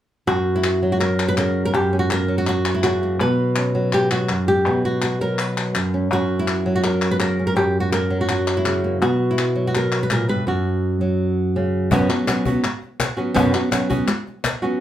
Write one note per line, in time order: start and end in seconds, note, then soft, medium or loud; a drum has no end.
0.27 1.73 F#2 medium
0.27 0.64 F#4 medium
0.56 1.01 E4 medium
0.64 0.91 F#4 medium
0.64 clap medium
0.83 1.77 F#3 medium
0.92 1.00 F#4 medium
1.00 1.28 A#4 medium
1.00 clap medium
1.19 clap medium
1.28 1.37 B4 medium
1.37 1.72 C#3 medium
1.37 1.64 A#4 medium
1.37 clap medium
1.65 1.74 A#4 medium
1.74 3.20 F#2 medium
1.74 1.99 G4 medium
1.93 2.74 C#4 soft
1.99 2.11 F#4 medium
2.11 2.38 A#4 loud
2.11 clap medium
2.28 3.74 F#3 soft
2.38 2.47 F#4 medium
2.47 2.82 F#4 medium
2.47 clap medium
2.65 clap medium
2.74 3.20 E4 medium
2.83 3.18 C#3 medium
2.83 3.20 F#4 medium
2.83 clap medium
3.03 3.19 A#3 soft
3.20 4.30 B2 medium
3.20 3.93 B4 loud
3.56 4.70 C#4 soft
3.56 clap medium
3.75 5.20 F#3 medium
3.93 4.11 G4 medium
3.93 clap medium
4.11 4.48 F#4 medium
4.11 clap medium
4.29 4.66 F#2 medium
4.29 clap medium
4.48 4.84 G4 medium
4.67 5.75 B2 medium
4.85 5.02 F#4 medium
5.02 5.21 F#4 medium
5.02 clap medium
5.21 6.12 F#3 medium
5.21 5.40 A#4 medium
5.38 6.12 B4 medium
5.38 clap medium
5.57 clap medium
5.75 6.10 F#2 medium
5.75 clap medium
5.94 6.12 C#4 soft
6.11 7.55 F#2 medium
6.11 6.65 F#3 soft
6.11 7.39 C#4 soft
6.11 6.47 F#4 medium
6.39 6.85 E4 medium
6.48 6.74 F#4 medium
6.48 clap medium
6.66 7.60 F#3 medium
6.76 6.84 F#4 medium
6.84 7.11 A#4 medium
6.84 clap medium
7.02 clap medium
7.11 7.20 B4 medium
7.20 7.55 C#3 medium
7.20 7.46 A#4 medium
7.20 clap medium
7.39 7.60 C#4 soft
7.47 7.56 A#4 medium
7.56 9.01 F#2 medium
7.56 7.80 G4 medium
7.80 7.92 F#4 medium
7.92 8.20 A#4 medium
7.92 clap medium
8.10 9.34 F#3 medium
8.21 8.29 F#4 medium
8.29 8.66 F#4 medium
8.29 clap medium
8.48 clap medium
8.57 9.02 E4 medium
8.65 8.99 C#3 medium
8.65 9.01 F#4 medium
8.65 clap medium
8.84 9.00 A#3 soft
9.02 10.47 B2 medium
9.02 9.38 F#4 medium
9.31 9.75 E4 medium
9.38 9.66 F#4 medium
9.38 clap medium
9.56 11.00 F#3 medium
9.67 9.75 F#4 medium
9.75 10.03 A#4 medium
9.75 clap medium
9.92 clap medium
10.03 10.11 B4 medium
10.10 10.28 A#2 medium
10.10 10.29 A#4 medium
10.10 clap medium
10.29 10.46 G2 medium
10.29 10.47 B4 medium
10.47 11.90 F#2 medium
10.47 11.92 F#4 medium
11.01 11.89 F#3 medium
11.56 11.90 C#3 medium
11.91 12.09 F#2 medium
11.91 12.09 B2 medium
11.91 12.09 F#3 medium
11.91 12.09 B3 loud
11.91 12.09 C#4 medium
11.91 12.08 F#4 loud
11.91 cajon bass loud
12.09 12.26 F#3 soft
12.09 12.27 B3 soft
12.09 12.27 C#4 medium
12.09 12.27 F#4 medium
12.09 cajon slap soft
12.09 clap medium
12.27 12.45 F#3 medium
12.27 12.45 B3 medium
12.27 12.45 C#4 medium
12.27 12.45 F#4 medium
12.27 cajon slap medium
12.27 clap medium
12.45 12.63 F#3 medium
12.45 12.63 B3 soft
12.45 12.63 C#4 medium
12.45 12.63 F#4 medium
12.45 cajon bass medium
12.64 muted nylon-string guitar stroke medium
12.64 clap medium
12.82 cajon slap soft
13.00 cajon slap loud
13.00 clap medium
13.17 13.34 F#3 soft
13.17 13.35 B3 soft
13.17 13.35 C#4 medium
13.17 13.35 F#4 medium
13.34 13.53 F#2 medium
13.34 13.53 B2 medium
13.34 13.53 F#3 medium
13.34 13.53 B3 medium
13.34 13.53 C#4 medium
13.34 13.52 F#4 loud
13.34 cajon bass loud
13.53 13.70 F#3 soft
13.53 13.71 B3 soft
13.53 13.71 C#4 medium
13.53 13.71 F#4 medium
13.53 cajon slap soft
13.53 clap medium
13.71 13.89 F#3 soft
13.71 13.89 B3 medium
13.71 13.89 C#4 medium
13.71 13.88 F#4 medium
13.71 cajon slap medium
13.71 clap medium
13.90 14.07 F#3 soft
13.90 14.07 B3 soft
13.90 14.07 C#4 medium
13.90 14.07 F#4 medium
13.90 cajon bass medium
14.08 muted nylon-string guitar stroke medium
14.08 cajon slap soft
14.08 clap medium
14.27 cajon slap soft
14.44 cajon slap loud
14.44 clap medium
14.62 14.80 F#3 soft
14.62 14.79 B3 soft
14.62 14.80 C#4 medium
14.62 14.80 F#4 medium